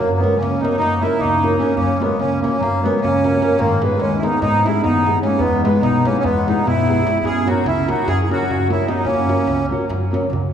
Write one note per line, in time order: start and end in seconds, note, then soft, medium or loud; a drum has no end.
0.00 0.20 F#2 loud
0.00 0.19 F#3 medium
0.00 0.20 A#3 medium
0.11 darbuka tek soft
0.17 0.37 G#3 medium
0.17 0.31 A#3 medium
0.17 0.38 B3 medium
0.17 0.31 C#4 medium
0.22 0.32 F#4 medium
0.22 0.32 A#4 medium
0.22 darbuka tek medium
0.34 0.62 C#2 medium
0.34 0.61 C#4 medium
0.34 darbuka tek soft
0.39 0.60 A#3 medium
0.39 darbuka tek medium
0.53 darbuka tek soft
0.60 0.72 A#3 medium
0.60 0.77 B3 medium
0.60 0.72 C#4 medium
0.60 0.76 D#4 medium
0.60 0.73 F#4 medium
0.60 0.73 A#4 medium
0.65 darbuka tek medium
0.78 1.03 F#2 loud
0.78 1.00 A#3 medium
0.78 1.02 D#4 loud
0.82 darbuka tek medium
1.01 1.13 A#3 medium
1.01 1.18 C#4 medium
1.01 1.13 C#4 medium
1.01 1.21 E4 medium
1.01 1.14 F#4 medium
1.01 1.14 A#4 medium
1.05 darbuka tek medium
1.13 darbuka tek soft
1.19 1.54 C#2 medium
1.19 1.56 A#3 medium
1.19 1.60 D#4 loud
1.23 darbuka dum medium
1.42 1.53 A#3 medium
1.42 1.53 C#4 medium
1.42 1.54 F#4 medium
1.42 1.54 A#4 medium
1.42 darbuka tek medium
1.58 1.75 A#3 medium
1.58 1.70 A#3 medium
1.58 1.75 C#4 medium
1.58 1.70 C#4 medium
1.58 1.70 F#4 medium
1.58 1.71 A#4 medium
1.58 darbuka tek medium
1.75 2.02 F#2 loud
1.75 1.98 A#3 medium
1.75 2.01 C#4 loud
1.75 darbuka dum medium
1.90 darbuka tek soft
2.00 2.17 G#3 medium
2.00 2.12 A#3 medium
2.00 2.18 B3 medium
2.00 2.12 C#4 medium
2.00 2.12 F#4 medium
2.00 2.13 A#4 medium
2.00 darbuka tek medium
2.10 darbuka tek soft
2.18 2.44 C#2 medium
2.18 2.40 A#3 medium
2.18 2.40 C#4 loud
2.18 darbuka tek medium
2.32 darbuka tek soft
2.40 2.58 A#3 medium
2.40 2.53 A#3 medium
2.40 2.61 C#4 medium
2.40 2.54 C#4 medium
2.40 2.54 F#4 medium
2.40 2.54 A#4 medium
2.40 darbuka tek medium
2.59 2.85 F#2 loud
2.59 2.81 F#3 medium
2.59 2.84 A#3 loud
2.63 darbuka tek medium
2.82 3.00 G#3 medium
2.82 2.95 A#3 medium
2.82 3.00 B3 medium
2.82 2.95 C#4 medium
2.82 2.95 F#4 medium
2.82 2.96 A#4 medium
2.82 darbuka tek medium
2.95 darbuka tek soft
3.01 3.36 C#2 medium
3.01 3.54 A#3 medium
3.01 3.60 C#4 loud
3.01 darbuka dum loud
3.23 3.34 A#3 medium
3.23 3.35 C#4 medium
3.23 3.35 F#4 medium
3.23 3.35 A#4 medium
3.23 darbuka tek medium
3.40 3.51 A#3 medium
3.40 3.52 C#4 medium
3.40 3.52 F#4 medium
3.40 3.52 A#4 medium
3.40 darbuka tek medium
3.58 3.84 G#2 loud
3.58 3.80 D#3 loud
3.58 3.82 A#3 loud
3.58 darbuka dum medium
3.71 darbuka tek soft
3.81 3.98 G#3 medium
3.81 3.93 G#3 medium
3.81 3.93 B3 medium
3.81 4.01 B3 medium
3.81 3.93 D#4 medium
3.81 3.94 G#4 medium
3.81 darbuka tek medium
3.91 darbuka tek soft
4.00 4.26 D#2 medium
4.00 4.16 G#3 medium
4.00 4.18 C#4 loud
4.00 darbuka tek medium
4.12 darbuka tek soft
4.17 4.22 C#4 medium
4.17 4.23 E4 medium
4.22 4.34 G#3 medium
4.22 4.34 B3 medium
4.22 4.40 B3 medium
4.22 4.40 D#4 medium
4.22 4.34 D#4 medium
4.22 4.35 G#4 medium
4.22 darbuka tek medium
4.42 4.67 G#2 loud
4.42 4.64 B3 medium
4.42 4.66 D#4 loud
4.42 darbuka tek medium
4.64 4.76 G#3 medium
4.64 4.76 B3 medium
4.64 4.83 C#4 medium
4.64 4.77 D#4 medium
4.64 4.82 E4 medium
4.64 4.78 G#4 medium
4.64 darbuka tek medium
4.75 darbuka tek soft
4.82 5.18 D#2 loud
4.82 5.20 B3 loud
4.82 5.19 D#4 loud
4.82 darbuka dum medium
5.05 5.16 G#3 medium
5.05 5.16 B3 medium
5.05 5.17 D#4 medium
5.05 5.17 G#4 medium
5.05 darbuka tek medium
5.22 5.33 G#3 medium
5.22 5.40 A#3 medium
5.22 5.34 B3 medium
5.22 5.40 C#4 medium
5.22 5.34 D#4 medium
5.22 5.34 G#4 medium
5.22 darbuka tek medium
5.38 5.64 E2 loud
5.38 5.62 G#3 medium
5.38 5.61 B3 loud
5.38 darbuka dum medium
5.63 5.81 G#3 medium
5.63 5.75 G#3 medium
5.63 5.82 B3 medium
5.63 5.75 B3 medium
5.63 5.76 E4 medium
5.63 5.76 G#4 medium
5.63 darbuka tek medium
5.74 darbuka tek soft
5.81 6.06 B1 loud
5.81 6.04 B3 medium
5.81 6.06 D#4 loud
5.81 darbuka tek medium
5.95 darbuka tek soft
6.05 6.17 G#3 medium
6.05 6.18 A#3 medium
6.05 6.17 B3 medium
6.05 6.17 C#4 medium
6.05 6.17 E4 medium
6.05 6.17 G#4 medium
6.05 darbuka tek medium
6.15 6.23 C#4 medium
6.15 darbuka tek soft
6.22 6.49 E2 loud
6.22 6.46 G#3 medium
6.22 6.25 A#3 medium
6.22 6.48 B3 loud
6.22 darbuka tek medium
6.22 darbuka dum medium
6.37 darbuka tek soft
6.47 6.58 G#3 medium
6.47 6.58 B3 medium
6.47 6.65 B3 medium
6.47 6.66 D#4 medium
6.47 6.59 E4 medium
6.47 6.59 G#4 medium
6.47 darbuka tek medium
6.58 darbuka tek soft
6.65 6.99 B1 medium
6.65 7.10 B3 loud
6.65 7.25 E4 loud
6.65 darbuka dum loud
6.87 6.98 G#3 medium
6.87 6.98 B3 medium
6.87 6.98 E4 medium
6.87 6.99 G#4 medium
6.87 darbuka tek medium
7.05 7.15 G#3 medium
7.05 7.16 B3 medium
7.05 7.16 E4 medium
7.05 7.16 G#4 medium
7.05 darbuka tek medium
7.16 darbuka tek soft
7.22 7.47 F#2 loud
7.22 7.46 C#4 loud
7.22 7.48 G#4 loud
7.22 darbuka dum loud
7.37 darbuka tek soft
7.45 7.57 F#3 medium
7.45 7.57 A#3 medium
7.45 7.57 C#4 medium
7.45 7.65 F#4 loud
7.45 7.58 F#4 medium
7.45 darbuka tek medium
7.50 7.65 D#4 medium
7.58 darbuka tek soft
7.64 7.89 C#2 loud
7.64 7.88 C#4 loud
7.64 7.90 E4 loud
7.64 darbuka tek medium
7.78 darbuka tek soft
7.86 7.98 F#3 medium
7.86 7.98 A#3 medium
7.86 7.99 C#4 medium
7.86 7.99 F#4 medium
7.86 darbuka tek medium
7.90 8.06 D#4 medium
7.90 8.08 F#4 medium
8.07 8.32 F#2 medium
8.07 8.22 C#4 medium
8.07 8.21 G#4 loud
8.07 darbuka tek medium
8.23 8.29 E4 medium
8.23 8.30 G#4 medium
8.28 8.40 F#3 medium
8.28 8.41 A#3 medium
8.28 8.41 C#4 medium
8.28 8.67 C#4 medium
8.28 8.41 F#4 medium
8.28 8.68 F#4 loud
8.28 darbuka tek medium
8.41 darbuka tek soft
8.47 8.82 C#2 medium
8.47 darbuka dum loud
8.68 8.80 F#3 medium
8.68 8.80 A#3 medium
8.68 8.80 C#4 medium
8.68 8.87 C#4 medium
8.68 8.89 E4 loud
8.68 8.80 F#4 medium
8.68 darbuka tek medium
8.87 8.98 F#3 medium
8.87 8.98 A#3 medium
8.87 9.04 B3 medium
8.87 8.98 C#4 medium
8.87 9.05 D#4 medium
8.87 8.99 F#4 medium
8.87 darbuka tek medium
9.04 9.30 F#2 loud
9.04 9.67 A#3 loud
9.04 9.66 C#4 loud
9.04 darbuka dum medium
9.19 darbuka tek soft
9.27 9.39 F#3 medium
9.27 9.40 A#3 medium
9.27 9.40 C#4 medium
9.27 9.40 F#4 medium
9.27 darbuka tek medium
9.39 darbuka tek soft
9.46 9.72 C#2 loud
9.46 darbuka tek medium
9.59 darbuka tek soft
9.70 9.81 F#3 medium
9.70 9.82 A#3 medium
9.70 9.82 C#4 medium
9.70 9.82 F#4 medium
9.89 10.14 F#2 loud
9.89 darbuka tek medium
10.11 10.23 F#3 medium
10.11 10.23 A#3 medium
10.11 10.24 C#4 medium
10.11 10.24 F#4 medium
10.11 darbuka tek medium
10.23 darbuka tek soft
10.30 10.53 C#2 medium
10.30 darbuka dum medium